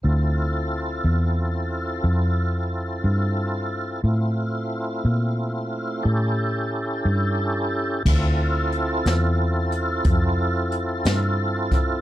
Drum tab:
CC |------------|------------|x-----------|
HH |------------|------------|--xx-xx-xx-x|
SD |------------|------------|---o-----o-o|
BD |------------|------------|o-----o----o|